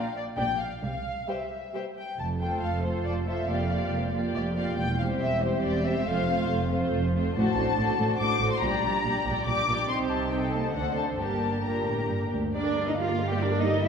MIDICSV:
0, 0, Header, 1, 6, 480
1, 0, Start_track
1, 0, Key_signature, -1, "major"
1, 0, Tempo, 447427
1, 885, Time_signature, 3, 2, 24, 8
1, 2817, Tempo, 430416
1, 7617, Tempo, 423131
1, 8097, Key_signature, -2, "minor"
1, 11457, Tempo, 446097
1, 13857, Tempo, 432277
1, 15340, End_track
2, 0, Start_track
2, 0, Title_t, "Violin section"
2, 0, Program_c, 0, 48
2, 0, Note_on_c, 0, 77, 53
2, 171, Note_off_c, 0, 77, 0
2, 177, Note_on_c, 0, 74, 54
2, 263, Note_off_c, 0, 74, 0
2, 397, Note_on_c, 0, 79, 64
2, 634, Note_off_c, 0, 79, 0
2, 637, Note_on_c, 0, 77, 53
2, 870, Note_off_c, 0, 77, 0
2, 883, Note_on_c, 0, 77, 58
2, 1367, Note_off_c, 0, 77, 0
2, 1379, Note_on_c, 0, 76, 44
2, 1864, Note_off_c, 0, 76, 0
2, 1876, Note_on_c, 0, 76, 49
2, 1962, Note_off_c, 0, 76, 0
2, 2116, Note_on_c, 0, 79, 51
2, 2346, Note_on_c, 0, 81, 49
2, 2348, Note_off_c, 0, 79, 0
2, 2432, Note_off_c, 0, 81, 0
2, 2586, Note_on_c, 0, 79, 42
2, 2808, Note_on_c, 0, 77, 51
2, 2813, Note_off_c, 0, 79, 0
2, 3048, Note_off_c, 0, 77, 0
2, 3048, Note_on_c, 0, 72, 45
2, 3289, Note_off_c, 0, 72, 0
2, 3294, Note_on_c, 0, 74, 49
2, 3383, Note_off_c, 0, 74, 0
2, 3542, Note_on_c, 0, 76, 48
2, 3772, Note_on_c, 0, 77, 54
2, 3777, Note_off_c, 0, 76, 0
2, 4498, Note_off_c, 0, 77, 0
2, 4744, Note_on_c, 0, 74, 56
2, 4833, Note_off_c, 0, 74, 0
2, 4979, Note_on_c, 0, 77, 59
2, 5213, Note_off_c, 0, 77, 0
2, 5216, Note_on_c, 0, 79, 66
2, 5450, Note_on_c, 0, 77, 50
2, 5453, Note_off_c, 0, 79, 0
2, 5539, Note_off_c, 0, 77, 0
2, 5695, Note_on_c, 0, 76, 69
2, 5928, Note_on_c, 0, 72, 56
2, 5935, Note_off_c, 0, 76, 0
2, 6175, Note_on_c, 0, 74, 65
2, 6176, Note_off_c, 0, 72, 0
2, 6413, Note_off_c, 0, 74, 0
2, 6425, Note_on_c, 0, 76, 67
2, 6654, Note_on_c, 0, 77, 73
2, 6661, Note_off_c, 0, 76, 0
2, 7374, Note_off_c, 0, 77, 0
2, 8104, Note_on_c, 0, 81, 72
2, 9011, Note_off_c, 0, 81, 0
2, 9052, Note_on_c, 0, 86, 76
2, 9410, Note_off_c, 0, 86, 0
2, 9419, Note_on_c, 0, 84, 69
2, 9532, Note_off_c, 0, 84, 0
2, 9541, Note_on_c, 0, 82, 72
2, 10488, Note_on_c, 0, 86, 77
2, 10499, Note_off_c, 0, 82, 0
2, 10958, Note_off_c, 0, 86, 0
2, 10975, Note_on_c, 0, 84, 69
2, 11065, Note_off_c, 0, 84, 0
2, 11199, Note_on_c, 0, 81, 53
2, 11443, Note_off_c, 0, 81, 0
2, 11449, Note_on_c, 0, 79, 49
2, 11675, Note_on_c, 0, 81, 53
2, 11685, Note_off_c, 0, 79, 0
2, 11913, Note_on_c, 0, 78, 60
2, 11918, Note_off_c, 0, 81, 0
2, 12152, Note_on_c, 0, 81, 48
2, 12154, Note_off_c, 0, 78, 0
2, 12238, Note_off_c, 0, 81, 0
2, 12391, Note_on_c, 0, 81, 58
2, 12876, Note_off_c, 0, 81, 0
2, 12886, Note_on_c, 0, 82, 49
2, 13613, Note_off_c, 0, 82, 0
2, 13848, Note_on_c, 0, 70, 45
2, 13964, Note_off_c, 0, 70, 0
2, 13977, Note_on_c, 0, 74, 38
2, 14086, Note_on_c, 0, 70, 39
2, 14098, Note_off_c, 0, 74, 0
2, 14213, Note_off_c, 0, 70, 0
2, 14216, Note_on_c, 0, 74, 42
2, 14338, Note_off_c, 0, 74, 0
2, 14338, Note_on_c, 0, 70, 45
2, 14449, Note_off_c, 0, 70, 0
2, 14456, Note_on_c, 0, 74, 43
2, 14572, Note_on_c, 0, 70, 39
2, 14576, Note_off_c, 0, 74, 0
2, 14694, Note_off_c, 0, 70, 0
2, 14700, Note_on_c, 0, 74, 39
2, 14810, Note_on_c, 0, 70, 42
2, 14818, Note_off_c, 0, 74, 0
2, 14924, Note_off_c, 0, 70, 0
2, 14939, Note_on_c, 0, 74, 40
2, 15057, Note_off_c, 0, 74, 0
2, 15064, Note_on_c, 0, 70, 43
2, 15172, Note_on_c, 0, 74, 42
2, 15180, Note_off_c, 0, 70, 0
2, 15294, Note_off_c, 0, 74, 0
2, 15298, Note_on_c, 0, 76, 46
2, 15340, Note_off_c, 0, 76, 0
2, 15340, End_track
3, 0, Start_track
3, 0, Title_t, "Violin section"
3, 0, Program_c, 1, 48
3, 388, Note_on_c, 1, 67, 39
3, 393, Note_on_c, 1, 74, 40
3, 474, Note_off_c, 1, 67, 0
3, 479, Note_off_c, 1, 74, 0
3, 1381, Note_on_c, 1, 72, 31
3, 1382, Note_on_c, 1, 67, 29
3, 1467, Note_off_c, 1, 72, 0
3, 1468, Note_off_c, 1, 67, 0
3, 1868, Note_on_c, 1, 67, 31
3, 1874, Note_on_c, 1, 72, 33
3, 1954, Note_off_c, 1, 67, 0
3, 1960, Note_off_c, 1, 72, 0
3, 2584, Note_on_c, 1, 72, 30
3, 2589, Note_on_c, 1, 69, 31
3, 3047, Note_off_c, 1, 69, 0
3, 3048, Note_off_c, 1, 72, 0
3, 3061, Note_on_c, 1, 69, 32
3, 3061, Note_on_c, 1, 72, 34
3, 3531, Note_off_c, 1, 69, 0
3, 3532, Note_off_c, 1, 72, 0
3, 3543, Note_on_c, 1, 69, 31
3, 3550, Note_on_c, 1, 72, 30
3, 3778, Note_off_c, 1, 69, 0
3, 3782, Note_off_c, 1, 72, 0
3, 3783, Note_on_c, 1, 67, 37
3, 3783, Note_on_c, 1, 74, 35
3, 4003, Note_off_c, 1, 74, 0
3, 4007, Note_off_c, 1, 67, 0
3, 4016, Note_on_c, 1, 74, 33
3, 4020, Note_on_c, 1, 67, 33
3, 4489, Note_off_c, 1, 67, 0
3, 4490, Note_off_c, 1, 74, 0
3, 4502, Note_on_c, 1, 67, 39
3, 4503, Note_on_c, 1, 74, 35
3, 4967, Note_off_c, 1, 74, 0
3, 4970, Note_off_c, 1, 67, 0
3, 4980, Note_on_c, 1, 74, 35
3, 4984, Note_on_c, 1, 67, 36
3, 5214, Note_off_c, 1, 74, 0
3, 5216, Note_off_c, 1, 67, 0
3, 5462, Note_on_c, 1, 67, 41
3, 5465, Note_on_c, 1, 72, 38
3, 5929, Note_off_c, 1, 72, 0
3, 5930, Note_off_c, 1, 67, 0
3, 5943, Note_on_c, 1, 67, 44
3, 5943, Note_on_c, 1, 72, 39
3, 6412, Note_off_c, 1, 67, 0
3, 6412, Note_off_c, 1, 72, 0
3, 6427, Note_on_c, 1, 72, 39
3, 6431, Note_on_c, 1, 67, 38
3, 6658, Note_off_c, 1, 72, 0
3, 6660, Note_off_c, 1, 67, 0
3, 6670, Note_on_c, 1, 72, 44
3, 6673, Note_on_c, 1, 65, 47
3, 6898, Note_off_c, 1, 72, 0
3, 6900, Note_off_c, 1, 65, 0
3, 6918, Note_on_c, 1, 65, 41
3, 6922, Note_on_c, 1, 72, 42
3, 7377, Note_off_c, 1, 65, 0
3, 7380, Note_off_c, 1, 72, 0
3, 7392, Note_on_c, 1, 65, 47
3, 7393, Note_on_c, 1, 72, 48
3, 7854, Note_off_c, 1, 65, 0
3, 7854, Note_off_c, 1, 72, 0
3, 7867, Note_on_c, 1, 72, 43
3, 7872, Note_on_c, 1, 65, 42
3, 8084, Note_off_c, 1, 72, 0
3, 8098, Note_on_c, 1, 72, 54
3, 8100, Note_off_c, 1, 65, 0
3, 8102, Note_on_c, 1, 66, 58
3, 8329, Note_off_c, 1, 72, 0
3, 8331, Note_off_c, 1, 66, 0
3, 8342, Note_on_c, 1, 72, 44
3, 8345, Note_on_c, 1, 66, 45
3, 8574, Note_off_c, 1, 72, 0
3, 8575, Note_off_c, 1, 66, 0
3, 8588, Note_on_c, 1, 72, 45
3, 8589, Note_on_c, 1, 66, 44
3, 8810, Note_off_c, 1, 66, 0
3, 8816, Note_off_c, 1, 72, 0
3, 8824, Note_on_c, 1, 66, 48
3, 8830, Note_on_c, 1, 72, 43
3, 9052, Note_off_c, 1, 66, 0
3, 9055, Note_off_c, 1, 72, 0
3, 9066, Note_on_c, 1, 66, 51
3, 9068, Note_on_c, 1, 72, 52
3, 9293, Note_off_c, 1, 66, 0
3, 9294, Note_off_c, 1, 72, 0
3, 9312, Note_on_c, 1, 66, 42
3, 9313, Note_on_c, 1, 72, 43
3, 9537, Note_off_c, 1, 66, 0
3, 9537, Note_off_c, 1, 72, 0
3, 9555, Note_on_c, 1, 67, 51
3, 9560, Note_on_c, 1, 74, 51
3, 9780, Note_off_c, 1, 67, 0
3, 9782, Note_off_c, 1, 74, 0
3, 9796, Note_on_c, 1, 67, 41
3, 9800, Note_on_c, 1, 74, 41
3, 10021, Note_off_c, 1, 74, 0
3, 10022, Note_off_c, 1, 67, 0
3, 10035, Note_on_c, 1, 74, 42
3, 10037, Note_on_c, 1, 67, 42
3, 10261, Note_off_c, 1, 74, 0
3, 10262, Note_off_c, 1, 67, 0
3, 10279, Note_on_c, 1, 67, 46
3, 10280, Note_on_c, 1, 74, 45
3, 10501, Note_off_c, 1, 67, 0
3, 10501, Note_off_c, 1, 74, 0
3, 10517, Note_on_c, 1, 74, 45
3, 10518, Note_on_c, 1, 67, 46
3, 10738, Note_off_c, 1, 74, 0
3, 10739, Note_off_c, 1, 67, 0
3, 10761, Note_on_c, 1, 67, 39
3, 10762, Note_on_c, 1, 74, 41
3, 10981, Note_off_c, 1, 67, 0
3, 10981, Note_off_c, 1, 74, 0
3, 10995, Note_on_c, 1, 72, 46
3, 10997, Note_on_c, 1, 67, 45
3, 11434, Note_off_c, 1, 72, 0
3, 11435, Note_off_c, 1, 67, 0
3, 11471, Note_on_c, 1, 72, 39
3, 11480, Note_on_c, 1, 69, 39
3, 11916, Note_off_c, 1, 69, 0
3, 11917, Note_off_c, 1, 72, 0
3, 11929, Note_on_c, 1, 69, 43
3, 11930, Note_on_c, 1, 72, 44
3, 12399, Note_off_c, 1, 69, 0
3, 12400, Note_off_c, 1, 72, 0
3, 12402, Note_on_c, 1, 67, 39
3, 12406, Note_on_c, 1, 70, 41
3, 12869, Note_off_c, 1, 67, 0
3, 12870, Note_off_c, 1, 70, 0
3, 12882, Note_on_c, 1, 67, 35
3, 12883, Note_on_c, 1, 70, 38
3, 13614, Note_off_c, 1, 67, 0
3, 13615, Note_off_c, 1, 70, 0
3, 13846, Note_on_c, 1, 74, 66
3, 14188, Note_off_c, 1, 74, 0
3, 14207, Note_on_c, 1, 75, 54
3, 14319, Note_on_c, 1, 77, 50
3, 14333, Note_off_c, 1, 75, 0
3, 14679, Note_off_c, 1, 77, 0
3, 14679, Note_on_c, 1, 79, 54
3, 14795, Note_on_c, 1, 74, 63
3, 14807, Note_off_c, 1, 79, 0
3, 15035, Note_on_c, 1, 75, 56
3, 15045, Note_off_c, 1, 74, 0
3, 15277, Note_on_c, 1, 76, 63
3, 15280, Note_off_c, 1, 75, 0
3, 15340, Note_off_c, 1, 76, 0
3, 15340, End_track
4, 0, Start_track
4, 0, Title_t, "Viola section"
4, 0, Program_c, 2, 48
4, 399, Note_on_c, 2, 62, 38
4, 400, Note_on_c, 2, 58, 37
4, 485, Note_off_c, 2, 62, 0
4, 486, Note_off_c, 2, 58, 0
4, 1375, Note_on_c, 2, 55, 31
4, 1376, Note_on_c, 2, 67, 32
4, 1461, Note_off_c, 2, 55, 0
4, 1462, Note_off_c, 2, 67, 0
4, 1860, Note_on_c, 2, 55, 33
4, 1863, Note_on_c, 2, 67, 31
4, 1946, Note_off_c, 2, 55, 0
4, 1949, Note_off_c, 2, 67, 0
4, 2581, Note_on_c, 2, 57, 28
4, 2588, Note_on_c, 2, 65, 28
4, 3037, Note_off_c, 2, 65, 0
4, 3041, Note_off_c, 2, 57, 0
4, 3050, Note_on_c, 2, 65, 28
4, 3055, Note_on_c, 2, 57, 27
4, 3522, Note_off_c, 2, 65, 0
4, 3525, Note_off_c, 2, 57, 0
4, 3535, Note_on_c, 2, 65, 33
4, 3538, Note_on_c, 2, 57, 33
4, 3758, Note_off_c, 2, 65, 0
4, 3771, Note_on_c, 2, 65, 32
4, 3776, Note_off_c, 2, 57, 0
4, 3777, Note_on_c, 2, 58, 33
4, 4006, Note_off_c, 2, 65, 0
4, 4012, Note_off_c, 2, 58, 0
4, 4019, Note_on_c, 2, 65, 33
4, 4025, Note_on_c, 2, 58, 33
4, 4487, Note_off_c, 2, 65, 0
4, 4488, Note_off_c, 2, 58, 0
4, 4501, Note_on_c, 2, 58, 34
4, 4501, Note_on_c, 2, 65, 31
4, 4961, Note_off_c, 2, 58, 0
4, 4961, Note_off_c, 2, 65, 0
4, 4974, Note_on_c, 2, 65, 36
4, 4975, Note_on_c, 2, 58, 34
4, 5211, Note_off_c, 2, 58, 0
4, 5211, Note_off_c, 2, 65, 0
4, 5463, Note_on_c, 2, 55, 38
4, 5468, Note_on_c, 2, 60, 39
4, 5932, Note_off_c, 2, 55, 0
4, 5932, Note_off_c, 2, 60, 0
4, 5945, Note_on_c, 2, 55, 40
4, 5945, Note_on_c, 2, 60, 38
4, 6409, Note_off_c, 2, 55, 0
4, 6413, Note_off_c, 2, 60, 0
4, 6422, Note_on_c, 2, 55, 42
4, 6429, Note_on_c, 2, 60, 40
4, 6650, Note_off_c, 2, 60, 0
4, 6655, Note_off_c, 2, 55, 0
4, 6663, Note_on_c, 2, 57, 40
4, 6664, Note_on_c, 2, 60, 42
4, 6883, Note_off_c, 2, 57, 0
4, 6883, Note_off_c, 2, 60, 0
4, 6896, Note_on_c, 2, 60, 40
4, 6897, Note_on_c, 2, 57, 42
4, 7367, Note_off_c, 2, 57, 0
4, 7367, Note_off_c, 2, 60, 0
4, 7382, Note_on_c, 2, 57, 39
4, 7387, Note_on_c, 2, 60, 39
4, 7849, Note_off_c, 2, 57, 0
4, 7851, Note_off_c, 2, 60, 0
4, 7870, Note_on_c, 2, 57, 43
4, 7875, Note_on_c, 2, 60, 46
4, 8087, Note_off_c, 2, 57, 0
4, 8100, Note_on_c, 2, 57, 47
4, 8100, Note_on_c, 2, 62, 44
4, 8101, Note_off_c, 2, 60, 0
4, 8320, Note_off_c, 2, 57, 0
4, 8321, Note_off_c, 2, 62, 0
4, 8334, Note_on_c, 2, 57, 41
4, 8335, Note_on_c, 2, 62, 41
4, 8564, Note_off_c, 2, 62, 0
4, 8570, Note_off_c, 2, 57, 0
4, 8577, Note_on_c, 2, 62, 45
4, 8585, Note_on_c, 2, 57, 43
4, 8804, Note_off_c, 2, 57, 0
4, 8810, Note_off_c, 2, 62, 0
4, 8818, Note_on_c, 2, 57, 43
4, 8822, Note_on_c, 2, 62, 44
4, 9045, Note_off_c, 2, 57, 0
4, 9046, Note_off_c, 2, 62, 0
4, 9058, Note_on_c, 2, 57, 41
4, 9059, Note_on_c, 2, 62, 47
4, 9278, Note_off_c, 2, 57, 0
4, 9278, Note_off_c, 2, 62, 0
4, 9291, Note_on_c, 2, 62, 44
4, 9292, Note_on_c, 2, 57, 45
4, 9526, Note_off_c, 2, 57, 0
4, 9526, Note_off_c, 2, 62, 0
4, 9542, Note_on_c, 2, 62, 46
4, 9545, Note_on_c, 2, 55, 49
4, 9757, Note_off_c, 2, 62, 0
4, 9759, Note_off_c, 2, 55, 0
4, 9771, Note_on_c, 2, 62, 43
4, 9772, Note_on_c, 2, 55, 43
4, 10002, Note_off_c, 2, 62, 0
4, 10004, Note_off_c, 2, 55, 0
4, 10015, Note_on_c, 2, 62, 39
4, 10018, Note_on_c, 2, 55, 42
4, 10248, Note_off_c, 2, 55, 0
4, 10248, Note_off_c, 2, 62, 0
4, 10261, Note_on_c, 2, 55, 39
4, 10261, Note_on_c, 2, 62, 40
4, 10479, Note_off_c, 2, 62, 0
4, 10481, Note_off_c, 2, 55, 0
4, 10492, Note_on_c, 2, 62, 42
4, 10495, Note_on_c, 2, 55, 44
4, 10720, Note_off_c, 2, 62, 0
4, 10724, Note_off_c, 2, 55, 0
4, 10734, Note_on_c, 2, 62, 44
4, 10738, Note_on_c, 2, 55, 37
4, 10967, Note_off_c, 2, 62, 0
4, 10969, Note_off_c, 2, 55, 0
4, 10969, Note_on_c, 2, 60, 44
4, 10973, Note_on_c, 2, 63, 43
4, 11420, Note_off_c, 2, 60, 0
4, 11422, Note_off_c, 2, 63, 0
4, 11461, Note_on_c, 2, 60, 44
4, 11464, Note_on_c, 2, 63, 43
4, 11548, Note_off_c, 2, 60, 0
4, 11695, Note_on_c, 2, 58, 36
4, 11781, Note_off_c, 2, 58, 0
4, 11920, Note_off_c, 2, 63, 0
4, 11924, Note_on_c, 2, 57, 39
4, 11926, Note_on_c, 2, 62, 39
4, 12393, Note_off_c, 2, 62, 0
4, 12397, Note_off_c, 2, 57, 0
4, 12406, Note_on_c, 2, 62, 35
4, 12410, Note_on_c, 2, 58, 37
4, 12882, Note_off_c, 2, 58, 0
4, 12884, Note_off_c, 2, 62, 0
4, 12895, Note_on_c, 2, 58, 37
4, 12897, Note_on_c, 2, 62, 34
4, 13621, Note_off_c, 2, 58, 0
4, 13622, Note_off_c, 2, 62, 0
4, 13856, Note_on_c, 2, 67, 42
4, 13857, Note_on_c, 2, 55, 39
4, 13968, Note_off_c, 2, 67, 0
4, 13969, Note_off_c, 2, 55, 0
4, 13977, Note_on_c, 2, 70, 37
4, 13978, Note_on_c, 2, 58, 38
4, 14096, Note_on_c, 2, 55, 41
4, 14097, Note_on_c, 2, 67, 38
4, 14098, Note_off_c, 2, 58, 0
4, 14098, Note_off_c, 2, 70, 0
4, 14216, Note_on_c, 2, 70, 35
4, 14218, Note_off_c, 2, 55, 0
4, 14218, Note_off_c, 2, 67, 0
4, 14221, Note_on_c, 2, 58, 37
4, 14338, Note_off_c, 2, 70, 0
4, 14340, Note_off_c, 2, 58, 0
4, 14342, Note_on_c, 2, 55, 40
4, 14345, Note_on_c, 2, 67, 43
4, 14452, Note_off_c, 2, 55, 0
4, 14453, Note_off_c, 2, 67, 0
4, 14463, Note_on_c, 2, 70, 43
4, 14466, Note_on_c, 2, 58, 37
4, 14580, Note_off_c, 2, 70, 0
4, 14581, Note_off_c, 2, 58, 0
4, 14582, Note_on_c, 2, 55, 42
4, 14583, Note_on_c, 2, 67, 38
4, 14698, Note_on_c, 2, 70, 37
4, 14699, Note_off_c, 2, 55, 0
4, 14699, Note_on_c, 2, 58, 39
4, 14700, Note_off_c, 2, 67, 0
4, 14817, Note_off_c, 2, 58, 0
4, 14817, Note_off_c, 2, 70, 0
4, 14818, Note_on_c, 2, 67, 46
4, 14820, Note_on_c, 2, 55, 43
4, 14928, Note_off_c, 2, 67, 0
4, 14929, Note_off_c, 2, 55, 0
4, 14935, Note_on_c, 2, 58, 40
4, 14938, Note_on_c, 2, 70, 38
4, 15055, Note_off_c, 2, 58, 0
4, 15057, Note_off_c, 2, 70, 0
4, 15061, Note_on_c, 2, 67, 40
4, 15066, Note_on_c, 2, 55, 41
4, 15173, Note_on_c, 2, 58, 39
4, 15176, Note_on_c, 2, 70, 42
4, 15178, Note_off_c, 2, 67, 0
4, 15181, Note_off_c, 2, 55, 0
4, 15294, Note_off_c, 2, 58, 0
4, 15294, Note_on_c, 2, 64, 42
4, 15296, Note_off_c, 2, 70, 0
4, 15296, Note_on_c, 2, 55, 45
4, 15340, Note_off_c, 2, 55, 0
4, 15340, Note_off_c, 2, 64, 0
4, 15340, End_track
5, 0, Start_track
5, 0, Title_t, "Cello section"
5, 0, Program_c, 3, 48
5, 401, Note_on_c, 3, 46, 51
5, 781, Note_off_c, 3, 46, 0
5, 889, Note_on_c, 3, 48, 53
5, 1277, Note_off_c, 3, 48, 0
5, 2345, Note_on_c, 3, 41, 42
5, 2759, Note_off_c, 3, 41, 0
5, 2818, Note_on_c, 3, 41, 34
5, 3242, Note_off_c, 3, 41, 0
5, 3288, Note_on_c, 3, 41, 37
5, 3719, Note_off_c, 3, 41, 0
5, 3782, Note_on_c, 3, 41, 50
5, 4206, Note_off_c, 3, 41, 0
5, 4264, Note_on_c, 3, 41, 41
5, 4686, Note_off_c, 3, 41, 0
5, 4742, Note_on_c, 3, 41, 42
5, 5162, Note_off_c, 3, 41, 0
5, 5224, Note_on_c, 3, 40, 54
5, 5648, Note_off_c, 3, 40, 0
5, 5707, Note_on_c, 3, 40, 46
5, 6129, Note_off_c, 3, 40, 0
5, 6189, Note_on_c, 3, 40, 49
5, 6606, Note_off_c, 3, 40, 0
5, 6660, Note_on_c, 3, 41, 56
5, 7081, Note_off_c, 3, 41, 0
5, 7138, Note_on_c, 3, 41, 52
5, 7559, Note_off_c, 3, 41, 0
5, 7613, Note_on_c, 3, 41, 55
5, 8039, Note_off_c, 3, 41, 0
5, 8099, Note_on_c, 3, 45, 67
5, 8190, Note_off_c, 3, 45, 0
5, 8336, Note_on_c, 3, 45, 51
5, 8427, Note_off_c, 3, 45, 0
5, 8574, Note_on_c, 3, 45, 50
5, 8665, Note_off_c, 3, 45, 0
5, 8822, Note_on_c, 3, 45, 51
5, 8913, Note_off_c, 3, 45, 0
5, 9055, Note_on_c, 3, 45, 44
5, 9146, Note_off_c, 3, 45, 0
5, 9287, Note_on_c, 3, 45, 52
5, 9377, Note_off_c, 3, 45, 0
5, 9534, Note_on_c, 3, 46, 61
5, 9625, Note_off_c, 3, 46, 0
5, 9772, Note_on_c, 3, 46, 45
5, 9862, Note_off_c, 3, 46, 0
5, 10014, Note_on_c, 3, 46, 43
5, 10104, Note_off_c, 3, 46, 0
5, 10254, Note_on_c, 3, 46, 47
5, 10345, Note_off_c, 3, 46, 0
5, 10499, Note_on_c, 3, 46, 46
5, 10590, Note_off_c, 3, 46, 0
5, 10729, Note_on_c, 3, 46, 45
5, 10820, Note_off_c, 3, 46, 0
5, 10969, Note_on_c, 3, 48, 55
5, 11881, Note_off_c, 3, 48, 0
5, 11918, Note_on_c, 3, 50, 45
5, 12398, Note_on_c, 3, 43, 45
5, 12403, Note_off_c, 3, 50, 0
5, 12832, Note_off_c, 3, 43, 0
5, 12890, Note_on_c, 3, 46, 53
5, 13117, Note_off_c, 3, 46, 0
5, 13135, Note_on_c, 3, 45, 46
5, 13373, Note_on_c, 3, 43, 46
5, 13376, Note_off_c, 3, 45, 0
5, 13459, Note_off_c, 3, 43, 0
5, 13613, Note_on_c, 3, 38, 42
5, 13848, Note_off_c, 3, 38, 0
5, 13849, Note_on_c, 3, 62, 64
5, 14189, Note_off_c, 3, 62, 0
5, 14222, Note_on_c, 3, 63, 55
5, 14269, Note_off_c, 3, 63, 0
5, 14327, Note_on_c, 3, 65, 67
5, 14684, Note_off_c, 3, 65, 0
5, 14692, Note_on_c, 3, 67, 58
5, 14809, Note_on_c, 3, 62, 66
5, 14813, Note_off_c, 3, 67, 0
5, 15048, Note_on_c, 3, 63, 71
5, 15052, Note_off_c, 3, 62, 0
5, 15284, Note_on_c, 3, 64, 82
5, 15291, Note_off_c, 3, 63, 0
5, 15340, Note_off_c, 3, 64, 0
5, 15340, End_track
6, 0, Start_track
6, 0, Title_t, "Double bass section"
6, 0, Program_c, 4, 48
6, 410, Note_on_c, 4, 34, 51
6, 786, Note_off_c, 4, 34, 0
6, 886, Note_on_c, 4, 36, 50
6, 1275, Note_off_c, 4, 36, 0
6, 2353, Note_on_c, 4, 29, 39
6, 2763, Note_off_c, 4, 29, 0
6, 2814, Note_on_c, 4, 29, 35
6, 3240, Note_off_c, 4, 29, 0
6, 3294, Note_on_c, 4, 29, 38
6, 3722, Note_off_c, 4, 29, 0
6, 3781, Note_on_c, 4, 29, 43
6, 4205, Note_off_c, 4, 29, 0
6, 4257, Note_on_c, 4, 29, 39
6, 4683, Note_off_c, 4, 29, 0
6, 4742, Note_on_c, 4, 29, 43
6, 5162, Note_off_c, 4, 29, 0
6, 5214, Note_on_c, 4, 28, 44
6, 5643, Note_off_c, 4, 28, 0
6, 5705, Note_on_c, 4, 28, 49
6, 6128, Note_off_c, 4, 28, 0
6, 6185, Note_on_c, 4, 28, 52
6, 6605, Note_off_c, 4, 28, 0
6, 6665, Note_on_c, 4, 29, 58
6, 7084, Note_off_c, 4, 29, 0
6, 7139, Note_on_c, 4, 29, 51
6, 7560, Note_off_c, 4, 29, 0
6, 7622, Note_on_c, 4, 29, 51
6, 8043, Note_off_c, 4, 29, 0
6, 8107, Note_on_c, 4, 33, 52
6, 8198, Note_off_c, 4, 33, 0
6, 8340, Note_on_c, 4, 33, 54
6, 8431, Note_off_c, 4, 33, 0
6, 8582, Note_on_c, 4, 33, 47
6, 8673, Note_off_c, 4, 33, 0
6, 8821, Note_on_c, 4, 33, 49
6, 8912, Note_off_c, 4, 33, 0
6, 9053, Note_on_c, 4, 33, 49
6, 9144, Note_off_c, 4, 33, 0
6, 9290, Note_on_c, 4, 33, 44
6, 9381, Note_off_c, 4, 33, 0
6, 9533, Note_on_c, 4, 34, 56
6, 9624, Note_off_c, 4, 34, 0
6, 9774, Note_on_c, 4, 34, 46
6, 9865, Note_off_c, 4, 34, 0
6, 10024, Note_on_c, 4, 34, 47
6, 10114, Note_off_c, 4, 34, 0
6, 10260, Note_on_c, 4, 34, 50
6, 10351, Note_off_c, 4, 34, 0
6, 10498, Note_on_c, 4, 34, 47
6, 10589, Note_off_c, 4, 34, 0
6, 10734, Note_on_c, 4, 34, 38
6, 10825, Note_off_c, 4, 34, 0
6, 10968, Note_on_c, 4, 36, 46
6, 11880, Note_off_c, 4, 36, 0
6, 11919, Note_on_c, 4, 38, 41
6, 12399, Note_on_c, 4, 31, 37
6, 12404, Note_off_c, 4, 38, 0
6, 13607, Note_off_c, 4, 31, 0
6, 13850, Note_on_c, 4, 31, 49
6, 15340, Note_off_c, 4, 31, 0
6, 15340, End_track
0, 0, End_of_file